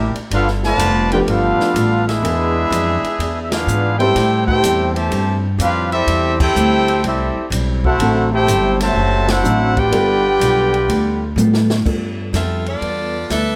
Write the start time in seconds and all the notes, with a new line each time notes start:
Already playing: A1 C3 G3 A#3 D4 E4 G4 A#4 E5
0.15 ride
0.31 G1 G3 B3 D4 F4 A4 B4 F5, ride
0.47 snare
0.63 D3 F3 A3 F4 B4 D5 A5, snare
0.78 F1 G3 B3 F4 A4, hi-hat pedal, ride
1.12 F3 A3 B3 D4 F4 G4 B4 D5 G5, ride
1.27 G1 G3 B3 D4 F4 A4 B4 F5, ride
1.58 muted upright bass stroke, snare
1.74 A1 G3 B3 F4 A4, hi-hat pedal, ride
2.08 G#3 B3 D4 E4 G#4 B4 E5, snare, ride
2.22 E2 E3 G#3 B3 D4 G#4, ride
2.70 F2 E3 B3 D4 G#4, hi-hat pedal, ride
3.03 muted upright bass stroke, ride
3.18 E2 E3 B3 D4, ride
3.22 G#4
3.42 E5
3.51 B3 D4 F4 G#4 B4 F5, snare, ride
3.67 G#2 E3 B3 D4 G#4, hi-hat pedal
3.99 G3 B3 C4 E4 G4 A4 C5 G5, ride
4.15 A2 G3 C4 E4, snare, ride
4.47 C4 E4 G4 A4 C5 G5, kick
4.63 E2 A2 G3 C4 E4, hi-hat pedal, ride
4.95 C3 E3 A3 G4 C5 E5 A5, ride
5.10 G2 A2 G3 C4 E4, ride
5.58 F2 A2 G3 C4 D4 E4 F4 G4 B4 F5, hi-hat pedal, ride
5.92 G3 C4 E4 G4 A4 E5, ride
6.06 E2 A2 G3 C4 E4, ride
6.40 C4 E4 G4 A4 C5 G5, kick, crash
6.55 D2 A2 G3 C4 E4, hi-hat pedal
6.88 ride
7.03 C2 A2 G3 C4 E4 G4 E5, ride
7.07 A4
7.36 muted upright bass stroke
7.50 B1 A2 G3 C4 E4, hi-hat pedal, ride
7.84 A3 C4 E4 F#4 A4 C5 F#5, kick
7.99 A1 D3 F#3 C4 D4 E4 A4, ride
8.32 A3 C4 E4 G4 A4 C5 G5
8.47 G1 D3 F#3 C4 E4, hi-hat pedal, ride
8.80 C3 F#3 A3 F#4 C5 E5 A5, snare, ride
8.95 F#1 D3 F#3 C4 E4
9.28 A3 C4 E4 F#4 A4 C5 F#5, snare, ride
9.43 A1 D3 F#3 C4 D4 E4 F#4, hi-hat pedal
9.76 B3 D4 F4 G4 B4 D5 G5, kick, ride
9.91 G1 G3 B3 D4 F4 A4, ride
9.96 A4
10.39 B1 G3 B3 F4 A4, hi-hat pedal, ride
10.74 ride
10.88 D2 G3 B3 F4 A4, ride
11.36 A2 G3 B3 F4, hi-hat pedal, high tom
11.40 A4
11.54 snare
11.70 snare
11.85 G2 G3 B3 D4 F4 A4, kick, crash
12.33 F2 G3 B3 C4 F4 A4 E5, snare, hi-hat pedal, ride
12.66 B3 F4 A4 D5, ride
12.81 E2 G3 B3 F4 A4, ride
13.29 D2 G3 B3 D4 F4 A4 B4 E5, snare, hi-hat pedal, ride